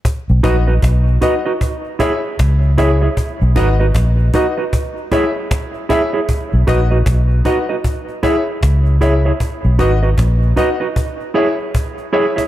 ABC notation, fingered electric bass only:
X:1
M:4/4
L:1/16
Q:"Swing 16ths" 1/4=77
K:B
V:1 name="Fingered electric bass" clef=bass
z B,,, A,,,2 B,,,2 z6 C,,4 | z B,,, G,,,2 A,,,2 z8 z2 | z B,,, A,,,2 B,,,2 z6 C,,4 | z B,,, G,,,2 A,,,2 z8 z2 |]